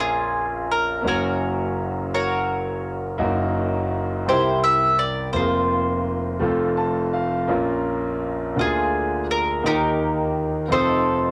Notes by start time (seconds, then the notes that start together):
Already playing: A#1 A#2 A#3 C#4 F4 A#4
0.00 C#4 F4 G#4
0.72 A#4
1.01 F#1 F#2 A#3 C#4
1.06 C#4 F#4 A#4
2.14 F#4 A#4 C#5
3.18 F#1 F#2 A#3 D#4 F#4 A#4
4.26 C2 C3 C4 D#4 E4 G4 A#4 C5
4.33 E4
4.64 E5
4.99 D5
5.33 F1 F2 A#3 C4 F4 G#4 C5
5.42 A#4
6.39 F1 F2 A3 C4 F4 A4
6.77 A5
7.13 F5
7.48 A#1 A#2 A#3 C#4 F4 A#4
8.55 D2 D3 A#3 D4 F4 F#4
8.59 F4 G#4
8.64 G#4
9.31 A#4
9.63 D#2 D#3 A#3 D#4 F4 G4 A#4
9.67 G4 A#4
10.68 F1 F2 C4 D#4 F4 A4
10.72 D#4 A4 C5